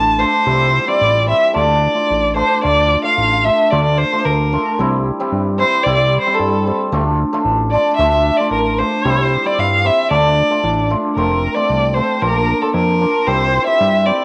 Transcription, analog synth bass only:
0.00 0.25 A1 loud
0.46 0.79 C2 loud
1.01 1.34 A1 medium
1.56 1.88 D2 loud
2.11 2.43 A1 medium
2.64 2.97 D2 loud
3.18 3.50 A1 medium
3.72 4.04 D2 loud
4.25 4.58 D2 medium
4.79 5.11 C2 loud
5.32 5.65 G2 medium
5.86 6.18 C2 loud
6.40 6.72 G2 medium
6.92 7.25 D2 loud
7.45 7.77 A1 medium
7.99 8.31 D2 loud
8.51 8.83 A1 medium
9.05 9.37 C2 loud
9.58 9.90 G2 medium
10.10 10.43 D2 loud
10.64 10.96 A1 medium
11.16 11.48 F1 loud
11.70 12.01 C2 medium
12.22 12.54 A#1 loud
12.74 13.06 F2 loud
13.28 13.59 C2 loud
13.81 14.12 G2 loud

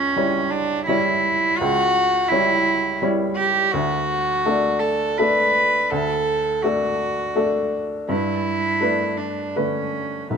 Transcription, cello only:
0.00 0.52 C#4 loud
0.50 0.86 D4 loud
0.87 1.59 E4 loud
1.58 2.29 F#4 loud
2.28 3.01 E4 loud
3.36 3.73 G4 loud
3.72 4.81 F#4 loud
4.79 5.19 A4 loud
5.17 5.92 B4 loud
5.90 6.64 A4 loud
6.62 7.73 F#4 loud
8.10 9.19 E4 loud
9.17 9.58 D4 medium
9.57 10.32 C#4 medium
10.33 10.37 B3 medium

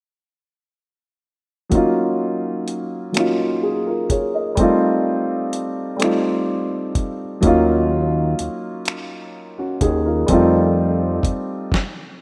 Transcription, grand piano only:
1.69 2.88 F#3 medium
1.69 2.89 A#3 medium
1.69 2.89 C#4 medium
1.74 2.90 D#4 medium
1.74 2.91 F4 medium
3.12 4.31 F#3 medium
3.12 4.32 A#3 medium
3.12 4.33 C#4 medium
3.17 3.62 D#4 medium
3.17 3.64 F4 medium
3.63 3.85 D#4 soft
3.63 3.85 G#4 medium
3.87 4.09 F4 soft
3.87 4.09 A#4 medium
4.10 4.33 G#4 soft
4.10 4.33 C#5 medium
4.34 4.80 A#4 soft
4.34 4.79 D#5 soft
4.55 5.74 G3 medium
4.55 5.75 A3 medium
4.55 5.76 C4 medium
4.60 5.76 D#4 medium
4.60 5.77 F4 medium
5.97 7.16 G3 medium
5.97 7.17 A3 medium
5.97 7.18 C4 medium
6.01 7.18 D#4 medium
6.01 7.19 F4 medium
7.41 8.59 F#3 medium
7.41 8.60 A#3 medium
7.41 8.61 C#4 medium
7.45 8.62 D#4 medium
7.45 8.62 F4 medium
9.58 9.81 C#4 soft
9.58 9.80 F#4 medium
9.81 10.05 D#4 soft
9.81 10.04 G#4 medium
10.06 10.31 F4 soft
10.06 10.51 A#4 medium
10.26 11.45 G3 medium
10.26 11.46 A3 medium
10.26 11.47 C4 medium
10.31 11.48 D#4 medium
10.31 11.48 F4 medium

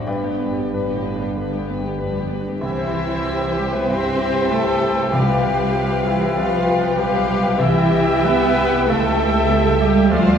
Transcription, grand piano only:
0.06 1.34 G2 medium
0.06 0.73 B4 soft
0.06 1.96 D5 soft
0.06 1.96 G5 medium
0.30 0.65 B3 soft
0.53 0.87 G4 soft
0.74 1.08 B4 soft
0.97 1.30 G4 soft
1.15 1.49 D4 soft
1.37 1.70 D3 soft
1.58 1.92 B3 soft
1.78 2.12 G4 soft
1.99 2.33 B4 soft
2.20 2.54 G4 soft
2.41 2.63 D4 soft
2.61 3.85 C2 medium
2.78 3.04 C5 medium
2.94 3.20 G4 soft
3.10 3.36 C5 medium
3.26 3.52 G4 medium
3.41 3.67 C5 medium
3.57 3.83 G4 medium
3.73 3.98 C5 medium
3.88 4.13 G2 soft
4.03 4.29 C5 medium
4.19 4.44 G4 medium
4.35 4.60 C5 soft
4.51 4.76 G4 medium
4.66 4.91 C5 medium
4.83 5.07 G4 soft
4.97 5.13 C5 soft
5.12 6.32 C2 medium
5.29 5.53 B4 medium
5.43 5.68 G4 medium
5.59 5.84 B4 medium
5.76 6.00 G4 medium
5.91 6.15 B4 medium
6.07 6.31 G4 medium
6.22 6.46 B4 medium
6.38 7.56 C2 medium
6.53 6.77 G4 medium
6.68 6.92 F4 medium
6.84 7.08 B4 medium
6.99 7.23 G4 medium
7.13 7.38 B4 medium
7.28 7.53 G4 medium
7.44 7.59 B4 medium
7.59 8.84 C2 medium
7.74 8.02 G4 medium
7.91 8.19 E4 medium
8.09 8.35 G4 medium
8.26 8.51 E4 medium
8.42 8.67 G4 medium
8.58 8.82 E4 medium
8.74 8.89 G4 medium
8.89 10.09 C#2 medium
9.05 9.29 A4 medium
9.20 9.45 G4 medium
9.36 9.60 A4 medium
9.51 9.76 G4 medium
9.66 9.91 A4 medium
9.81 10.05 G4 medium
9.97 10.12 A4 medium
10.11 10.38 D2 medium
10.27 10.38 C5 medium

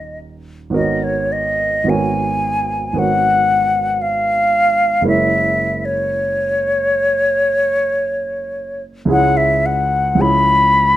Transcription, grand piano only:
0.00 0.71 D#1 medium
0.00 0.69 D#2 medium
0.00 0.69 C#4 soft
0.00 0.70 F#4 soft
0.00 0.70 A#4 soft
0.00 0.71 D#5 soft
0.70 1.83 G#1 medium
0.70 1.84 B3 soft
0.70 1.85 F#4 soft
0.74 1.85 A#4 soft
0.74 1.86 C#5 soft
1.84 2.92 G#1 soft
1.84 2.93 B3 soft
1.84 2.93 F#4 soft
1.84 2.94 A#4 soft
1.89 2.95 C#5 soft
2.93 5.00 G#1 soft
2.93 5.01 B3 soft
2.93 5.02 F#4 soft
2.93 5.02 A#4 soft
2.98 5.03 C#5 soft
5.01 9.04 F#1 medium
5.01 9.05 G#3 soft
5.01 9.06 E4 soft
5.01 9.06 A#4 soft
5.06 9.07 C#5 soft
9.05 10.14 C#2 soft
9.05 10.14 G#3 soft
9.05 10.15 E4 soft
9.05 10.16 G#4 soft
9.10 10.16 C#5 soft
10.15 10.97 C#2 soft
10.15 10.97 G#3 soft
10.15 10.97 E4 soft
10.19 10.97 G#4 soft
10.19 10.97 C#5 soft

